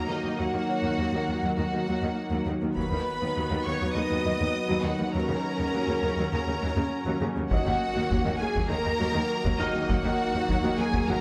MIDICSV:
0, 0, Header, 1, 8, 480
1, 0, Start_track
1, 0, Tempo, 594059
1, 313, Time_signature, 4, 2, 24, 8
1, 9057, End_track
2, 0, Start_track
2, 0, Title_t, "Violin section"
2, 0, Program_c, 0, 48
2, 77, Note_on_c, 0, 75, 53
2, 314, Note_on_c, 0, 78, 66
2, 315, Note_off_c, 0, 75, 0
2, 1268, Note_off_c, 0, 78, 0
2, 1278, Note_on_c, 0, 78, 58
2, 1981, Note_off_c, 0, 78, 0
2, 2231, Note_on_c, 0, 83, 65
2, 2919, Note_off_c, 0, 83, 0
2, 2944, Note_on_c, 0, 85, 62
2, 3189, Note_off_c, 0, 85, 0
2, 3194, Note_on_c, 0, 87, 68
2, 3911, Note_on_c, 0, 78, 59
2, 3913, Note_off_c, 0, 87, 0
2, 4151, Note_on_c, 0, 82, 71
2, 4152, Note_off_c, 0, 78, 0
2, 5093, Note_off_c, 0, 82, 0
2, 5109, Note_on_c, 0, 82, 64
2, 5816, Note_off_c, 0, 82, 0
2, 6061, Note_on_c, 0, 78, 75
2, 6755, Note_off_c, 0, 78, 0
2, 6788, Note_on_c, 0, 80, 72
2, 7028, Note_on_c, 0, 82, 86
2, 7030, Note_off_c, 0, 80, 0
2, 7736, Note_off_c, 0, 82, 0
2, 7759, Note_on_c, 0, 75, 75
2, 7996, Note_off_c, 0, 75, 0
2, 8002, Note_on_c, 0, 78, 84
2, 8718, Note_off_c, 0, 78, 0
2, 8718, Note_on_c, 0, 80, 88
2, 8956, Note_off_c, 0, 80, 0
2, 8962, Note_on_c, 0, 82, 92
2, 9057, Note_off_c, 0, 82, 0
2, 9057, End_track
3, 0, Start_track
3, 0, Title_t, "Felt piano"
3, 0, Program_c, 1, 0
3, 0, Control_c, 1, 64, 127
3, 0, Note_on_c, 1, 66, 28
3, 0, Note_on_c, 1, 78, 33
3, 522, Note_off_c, 1, 78, 0
3, 523, Note_off_c, 1, 66, 0
3, 559, Note_on_c, 1, 73, 35
3, 1963, Note_off_c, 1, 73, 0
3, 2249, Control_c, 1, 64, 0
3, 2381, Control_c, 1, 64, 127
3, 3444, Note_on_c, 1, 75, 33
3, 4169, Control_c, 1, 64, 0
3, 4310, Control_c, 1, 64, 127
3, 4846, Note_off_c, 1, 75, 0
3, 6089, Control_c, 1, 64, 0
3, 6089, Note_on_c, 1, 75, 50
3, 6216, Control_c, 1, 64, 127
3, 7488, Note_off_c, 1, 75, 0
3, 7753, Note_on_c, 1, 66, 39
3, 7757, Note_on_c, 1, 89, 60
3, 8952, Note_off_c, 1, 66, 0
3, 8964, Note_on_c, 1, 66, 41
3, 8968, Note_on_c, 1, 78, 51
3, 9057, Note_off_c, 1, 66, 0
3, 9057, Note_off_c, 1, 78, 0
3, 9057, Note_off_c, 1, 89, 0
3, 9057, End_track
4, 0, Start_track
4, 0, Title_t, "Violin section"
4, 0, Program_c, 2, 48
4, 66, Note_on_c, 2, 63, 48
4, 305, Note_on_c, 2, 66, 57
4, 309, Note_off_c, 2, 63, 0
4, 1253, Note_off_c, 2, 66, 0
4, 1263, Note_on_c, 2, 66, 51
4, 1973, Note_off_c, 2, 66, 0
4, 2229, Note_on_c, 2, 71, 55
4, 2918, Note_off_c, 2, 71, 0
4, 2953, Note_on_c, 2, 73, 53
4, 3193, Note_off_c, 2, 73, 0
4, 3201, Note_on_c, 2, 75, 64
4, 3903, Note_off_c, 2, 75, 0
4, 3919, Note_on_c, 2, 66, 52
4, 4156, Note_off_c, 2, 66, 0
4, 4158, Note_on_c, 2, 70, 66
4, 5097, Note_off_c, 2, 70, 0
4, 5109, Note_on_c, 2, 70, 57
4, 5816, Note_off_c, 2, 70, 0
4, 6070, Note_on_c, 2, 66, 67
4, 6759, Note_off_c, 2, 66, 0
4, 6784, Note_on_c, 2, 68, 66
4, 7029, Note_off_c, 2, 68, 0
4, 7036, Note_on_c, 2, 70, 82
4, 7752, Note_on_c, 2, 63, 65
4, 7754, Note_off_c, 2, 70, 0
4, 7992, Note_off_c, 2, 63, 0
4, 7995, Note_on_c, 2, 66, 77
4, 8700, Note_off_c, 2, 66, 0
4, 8709, Note_on_c, 2, 68, 70
4, 8951, Note_off_c, 2, 68, 0
4, 8954, Note_on_c, 2, 70, 89
4, 9057, Note_off_c, 2, 70, 0
4, 9057, End_track
5, 0, Start_track
5, 0, Title_t, "Ambient pad"
5, 0, Program_c, 3, 92
5, 0, Note_on_c, 3, 54, 55
5, 0, Note_on_c, 3, 63, 56
5, 0, Note_on_c, 3, 66, 58
5, 0, Note_on_c, 3, 70, 58
5, 2203, Note_off_c, 3, 54, 0
5, 2204, Note_off_c, 3, 63, 0
5, 2204, Note_off_c, 3, 66, 0
5, 2205, Note_off_c, 3, 70, 0
5, 2228, Note_on_c, 3, 54, 59
5, 2230, Note_on_c, 3, 63, 56
5, 2230, Note_on_c, 3, 71, 60
5, 2232, Note_on_c, 3, 66, 60
5, 4119, Note_off_c, 3, 63, 0
5, 4152, Note_off_c, 3, 71, 0
5, 4158, Note_on_c, 3, 61, 60
5, 4160, Note_on_c, 3, 73, 60
5, 6038, Note_off_c, 3, 54, 0
5, 6040, Note_off_c, 3, 66, 0
5, 6072, Note_on_c, 3, 66, 63
5, 6074, Note_on_c, 3, 54, 63
5, 6075, Note_off_c, 3, 61, 0
5, 6075, Note_on_c, 3, 70, 63
5, 6076, Note_off_c, 3, 73, 0
5, 6078, Note_on_c, 3, 63, 63
5, 9057, Note_off_c, 3, 54, 0
5, 9057, Note_off_c, 3, 63, 0
5, 9057, Note_off_c, 3, 66, 0
5, 9057, Note_off_c, 3, 70, 0
5, 9057, End_track
6, 0, Start_track
6, 0, Title_t, "Viola section"
6, 0, Program_c, 4, 48
6, 0, Note_on_c, 4, 58, 41
6, 72, Note_on_c, 4, 51, 35
6, 120, Note_off_c, 4, 51, 0
6, 200, Note_on_c, 4, 51, 37
6, 247, Note_off_c, 4, 51, 0
6, 308, Note_on_c, 4, 54, 43
6, 357, Note_off_c, 4, 54, 0
6, 432, Note_on_c, 4, 51, 33
6, 480, Note_off_c, 4, 51, 0
6, 673, Note_on_c, 4, 51, 31
6, 721, Note_off_c, 4, 51, 0
6, 797, Note_on_c, 4, 54, 48
6, 844, Note_off_c, 4, 54, 0
6, 918, Note_on_c, 4, 51, 38
6, 965, Note_off_c, 4, 51, 0
6, 1040, Note_on_c, 4, 51, 36
6, 1087, Note_off_c, 4, 51, 0
6, 1159, Note_on_c, 4, 54, 50
6, 1206, Note_off_c, 4, 54, 0
6, 1280, Note_on_c, 4, 51, 36
6, 1326, Note_off_c, 4, 51, 0
6, 1404, Note_on_c, 4, 51, 33
6, 1450, Note_off_c, 4, 51, 0
6, 1519, Note_on_c, 4, 54, 50
6, 1566, Note_off_c, 4, 54, 0
6, 1643, Note_on_c, 4, 51, 38
6, 1689, Note_off_c, 4, 51, 0
6, 1882, Note_on_c, 4, 54, 46
6, 1929, Note_off_c, 4, 54, 0
6, 2008, Note_on_c, 4, 51, 38
6, 2053, Note_off_c, 4, 51, 0
6, 2128, Note_on_c, 4, 51, 42
6, 2173, Note_off_c, 4, 51, 0
6, 2197, Note_off_c, 4, 58, 0
6, 2234, Note_on_c, 4, 59, 45
6, 2236, Note_on_c, 4, 54, 45
6, 2283, Note_off_c, 4, 54, 0
6, 2361, Note_on_c, 4, 51, 34
6, 2408, Note_off_c, 4, 51, 0
6, 2605, Note_on_c, 4, 51, 34
6, 2651, Note_off_c, 4, 51, 0
6, 2719, Note_on_c, 4, 54, 47
6, 2766, Note_off_c, 4, 54, 0
6, 2843, Note_on_c, 4, 51, 40
6, 2889, Note_off_c, 4, 51, 0
6, 2955, Note_on_c, 4, 51, 38
6, 3002, Note_off_c, 4, 51, 0
6, 3076, Note_on_c, 4, 54, 53
6, 3123, Note_off_c, 4, 54, 0
6, 3197, Note_on_c, 4, 51, 44
6, 3244, Note_off_c, 4, 51, 0
6, 3323, Note_on_c, 4, 51, 39
6, 3369, Note_off_c, 4, 51, 0
6, 3435, Note_on_c, 4, 54, 51
6, 3483, Note_off_c, 4, 54, 0
6, 3552, Note_on_c, 4, 51, 42
6, 3600, Note_off_c, 4, 51, 0
6, 3785, Note_on_c, 4, 54, 54
6, 3835, Note_off_c, 4, 54, 0
6, 3898, Note_on_c, 4, 51, 39
6, 3949, Note_off_c, 4, 51, 0
6, 4022, Note_on_c, 4, 51, 48
6, 4072, Note_off_c, 4, 51, 0
6, 4140, Note_on_c, 4, 54, 47
6, 4146, Note_on_c, 4, 61, 51
6, 4153, Note_off_c, 4, 59, 0
6, 4191, Note_off_c, 4, 54, 0
6, 4267, Note_on_c, 4, 49, 36
6, 4316, Note_off_c, 4, 49, 0
6, 4510, Note_on_c, 4, 49, 35
6, 4558, Note_off_c, 4, 49, 0
6, 4625, Note_on_c, 4, 54, 52
6, 4675, Note_off_c, 4, 54, 0
6, 4755, Note_on_c, 4, 49, 40
6, 4802, Note_off_c, 4, 49, 0
6, 4872, Note_on_c, 4, 49, 43
6, 4920, Note_off_c, 4, 49, 0
6, 4994, Note_on_c, 4, 54, 50
6, 5041, Note_off_c, 4, 54, 0
6, 5114, Note_on_c, 4, 49, 48
6, 5162, Note_off_c, 4, 49, 0
6, 5228, Note_on_c, 4, 49, 41
6, 5277, Note_off_c, 4, 49, 0
6, 5350, Note_on_c, 4, 54, 58
6, 5399, Note_off_c, 4, 54, 0
6, 5465, Note_on_c, 4, 49, 45
6, 5515, Note_off_c, 4, 49, 0
6, 5703, Note_on_c, 4, 54, 58
6, 5753, Note_off_c, 4, 54, 0
6, 5825, Note_on_c, 4, 49, 51
6, 5875, Note_off_c, 4, 49, 0
6, 5942, Note_on_c, 4, 49, 51
6, 5992, Note_off_c, 4, 49, 0
6, 6037, Note_off_c, 4, 61, 0
6, 6063, Note_on_c, 4, 58, 48
6, 6065, Note_on_c, 4, 54, 61
6, 6114, Note_off_c, 4, 54, 0
6, 6187, Note_on_c, 4, 51, 40
6, 6236, Note_off_c, 4, 51, 0
6, 6421, Note_on_c, 4, 51, 43
6, 6471, Note_off_c, 4, 51, 0
6, 6536, Note_on_c, 4, 54, 60
6, 6588, Note_off_c, 4, 54, 0
6, 6670, Note_on_c, 4, 51, 47
6, 6719, Note_off_c, 4, 51, 0
6, 6783, Note_on_c, 4, 51, 43
6, 6833, Note_off_c, 4, 51, 0
6, 6902, Note_on_c, 4, 54, 63
6, 6952, Note_off_c, 4, 54, 0
6, 7019, Note_on_c, 4, 51, 54
6, 7070, Note_off_c, 4, 51, 0
6, 7138, Note_on_c, 4, 51, 46
6, 7189, Note_off_c, 4, 51, 0
6, 7258, Note_on_c, 4, 54, 67
6, 7309, Note_off_c, 4, 54, 0
6, 7378, Note_on_c, 4, 51, 55
6, 7429, Note_off_c, 4, 51, 0
6, 7628, Note_on_c, 4, 54, 59
6, 7677, Note_off_c, 4, 54, 0
6, 7745, Note_on_c, 4, 51, 50
6, 7794, Note_off_c, 4, 51, 0
6, 7872, Note_on_c, 4, 51, 53
6, 7920, Note_off_c, 4, 51, 0
6, 7994, Note_on_c, 4, 54, 65
6, 8042, Note_off_c, 4, 54, 0
6, 8116, Note_on_c, 4, 51, 47
6, 8163, Note_off_c, 4, 51, 0
6, 8354, Note_on_c, 4, 51, 50
6, 8402, Note_off_c, 4, 51, 0
6, 8481, Note_on_c, 4, 54, 67
6, 8528, Note_off_c, 4, 54, 0
6, 8604, Note_on_c, 4, 51, 53
6, 8650, Note_off_c, 4, 51, 0
6, 8726, Note_on_c, 4, 51, 51
6, 8771, Note_off_c, 4, 51, 0
6, 8840, Note_on_c, 4, 54, 65
6, 8886, Note_off_c, 4, 54, 0
6, 8977, Note_on_c, 4, 51, 62
6, 9020, Note_off_c, 4, 51, 0
6, 9057, Note_off_c, 4, 58, 0
6, 9057, End_track
7, 0, Start_track
7, 0, Title_t, "Cello section"
7, 0, Program_c, 5, 48
7, 73, Note_on_c, 5, 39, 34
7, 121, Note_off_c, 5, 39, 0
7, 197, Note_on_c, 5, 39, 34
7, 244, Note_off_c, 5, 39, 0
7, 316, Note_on_c, 5, 39, 46
7, 363, Note_off_c, 5, 39, 0
7, 435, Note_on_c, 5, 39, 33
7, 482, Note_off_c, 5, 39, 0
7, 671, Note_on_c, 5, 39, 35
7, 719, Note_off_c, 5, 39, 0
7, 788, Note_on_c, 5, 39, 52
7, 837, Note_off_c, 5, 39, 0
7, 911, Note_on_c, 5, 39, 36
7, 960, Note_off_c, 5, 39, 0
7, 1030, Note_on_c, 5, 39, 35
7, 1078, Note_off_c, 5, 39, 0
7, 1154, Note_on_c, 5, 39, 52
7, 1202, Note_off_c, 5, 39, 0
7, 1273, Note_on_c, 5, 39, 32
7, 1321, Note_off_c, 5, 39, 0
7, 1396, Note_on_c, 5, 39, 33
7, 1443, Note_off_c, 5, 39, 0
7, 1517, Note_on_c, 5, 39, 51
7, 1564, Note_off_c, 5, 39, 0
7, 1633, Note_on_c, 5, 39, 37
7, 1681, Note_off_c, 5, 39, 0
7, 1866, Note_on_c, 5, 39, 48
7, 1916, Note_off_c, 5, 39, 0
7, 1991, Note_on_c, 5, 39, 38
7, 2039, Note_off_c, 5, 39, 0
7, 2113, Note_on_c, 5, 39, 35
7, 2161, Note_off_c, 5, 39, 0
7, 2232, Note_on_c, 5, 39, 55
7, 2280, Note_off_c, 5, 39, 0
7, 2354, Note_on_c, 5, 39, 37
7, 2402, Note_off_c, 5, 39, 0
7, 2594, Note_on_c, 5, 39, 39
7, 2642, Note_off_c, 5, 39, 0
7, 2718, Note_on_c, 5, 39, 56
7, 2765, Note_off_c, 5, 39, 0
7, 2833, Note_on_c, 5, 39, 38
7, 2881, Note_off_c, 5, 39, 0
7, 2959, Note_on_c, 5, 39, 38
7, 3006, Note_off_c, 5, 39, 0
7, 3077, Note_on_c, 5, 39, 54
7, 3124, Note_off_c, 5, 39, 0
7, 3196, Note_on_c, 5, 39, 36
7, 3244, Note_off_c, 5, 39, 0
7, 3317, Note_on_c, 5, 39, 41
7, 3365, Note_off_c, 5, 39, 0
7, 3433, Note_on_c, 5, 39, 52
7, 3481, Note_off_c, 5, 39, 0
7, 3556, Note_on_c, 5, 39, 37
7, 3603, Note_off_c, 5, 39, 0
7, 3790, Note_on_c, 5, 39, 51
7, 3838, Note_off_c, 5, 39, 0
7, 3909, Note_on_c, 5, 39, 43
7, 3958, Note_off_c, 5, 39, 0
7, 4032, Note_on_c, 5, 39, 39
7, 4080, Note_off_c, 5, 39, 0
7, 4150, Note_on_c, 5, 39, 60
7, 4199, Note_off_c, 5, 39, 0
7, 4274, Note_on_c, 5, 39, 39
7, 4321, Note_off_c, 5, 39, 0
7, 4514, Note_on_c, 5, 39, 40
7, 4562, Note_off_c, 5, 39, 0
7, 4632, Note_on_c, 5, 39, 55
7, 4680, Note_off_c, 5, 39, 0
7, 4749, Note_on_c, 5, 39, 45
7, 4798, Note_off_c, 5, 39, 0
7, 4868, Note_on_c, 5, 39, 43
7, 4917, Note_off_c, 5, 39, 0
7, 4990, Note_on_c, 5, 39, 59
7, 5038, Note_off_c, 5, 39, 0
7, 5111, Note_on_c, 5, 39, 41
7, 5160, Note_off_c, 5, 39, 0
7, 5228, Note_on_c, 5, 39, 39
7, 5277, Note_off_c, 5, 39, 0
7, 5350, Note_on_c, 5, 39, 60
7, 5399, Note_off_c, 5, 39, 0
7, 5466, Note_on_c, 5, 39, 41
7, 5515, Note_off_c, 5, 39, 0
7, 5702, Note_on_c, 5, 39, 59
7, 5752, Note_off_c, 5, 39, 0
7, 5828, Note_on_c, 5, 39, 47
7, 5877, Note_off_c, 5, 39, 0
7, 5949, Note_on_c, 5, 39, 40
7, 5998, Note_off_c, 5, 39, 0
7, 6068, Note_on_c, 5, 39, 63
7, 6117, Note_off_c, 5, 39, 0
7, 6197, Note_on_c, 5, 39, 42
7, 6244, Note_off_c, 5, 39, 0
7, 6433, Note_on_c, 5, 39, 46
7, 6481, Note_off_c, 5, 39, 0
7, 6556, Note_on_c, 5, 39, 65
7, 6603, Note_off_c, 5, 39, 0
7, 6677, Note_on_c, 5, 39, 47
7, 6724, Note_off_c, 5, 39, 0
7, 6793, Note_on_c, 5, 39, 46
7, 6841, Note_off_c, 5, 39, 0
7, 6918, Note_on_c, 5, 39, 64
7, 6965, Note_off_c, 5, 39, 0
7, 7039, Note_on_c, 5, 39, 47
7, 7086, Note_off_c, 5, 39, 0
7, 7159, Note_on_c, 5, 39, 49
7, 7206, Note_off_c, 5, 39, 0
7, 7281, Note_on_c, 5, 39, 65
7, 7327, Note_off_c, 5, 39, 0
7, 7399, Note_on_c, 5, 39, 48
7, 7446, Note_off_c, 5, 39, 0
7, 7644, Note_on_c, 5, 39, 71
7, 7690, Note_off_c, 5, 39, 0
7, 7759, Note_on_c, 5, 39, 52
7, 7806, Note_off_c, 5, 39, 0
7, 7875, Note_on_c, 5, 39, 46
7, 7922, Note_off_c, 5, 39, 0
7, 7996, Note_on_c, 5, 39, 72
7, 8043, Note_off_c, 5, 39, 0
7, 8115, Note_on_c, 5, 39, 51
7, 8163, Note_off_c, 5, 39, 0
7, 8359, Note_on_c, 5, 39, 47
7, 8406, Note_off_c, 5, 39, 0
7, 8473, Note_on_c, 5, 39, 67
7, 8521, Note_off_c, 5, 39, 0
7, 8595, Note_on_c, 5, 39, 53
7, 8642, Note_off_c, 5, 39, 0
7, 8714, Note_on_c, 5, 39, 53
7, 8762, Note_off_c, 5, 39, 0
7, 8830, Note_on_c, 5, 39, 72
7, 8879, Note_off_c, 5, 39, 0
7, 8957, Note_on_c, 5, 39, 53
7, 9005, Note_off_c, 5, 39, 0
7, 9057, End_track
8, 0, Start_track
8, 0, Title_t, "Taiko and cinematic ensemble drums"
8, 2234, Note_on_c, 9, 41, 50
8, 2315, Note_off_c, 9, 41, 0
8, 6069, Note_on_c, 9, 41, 82
8, 6150, Note_off_c, 9, 41, 0
8, 6548, Note_on_c, 9, 41, 65
8, 6629, Note_off_c, 9, 41, 0
8, 6911, Note_on_c, 9, 41, 62
8, 6992, Note_off_c, 9, 41, 0
8, 7632, Note_on_c, 9, 41, 75
8, 7712, Note_off_c, 9, 41, 0
8, 7995, Note_on_c, 9, 41, 83
8, 8076, Note_off_c, 9, 41, 0
8, 8476, Note_on_c, 9, 41, 65
8, 8556, Note_off_c, 9, 41, 0
8, 8833, Note_on_c, 9, 41, 65
8, 8914, Note_off_c, 9, 41, 0
8, 9057, End_track
0, 0, End_of_file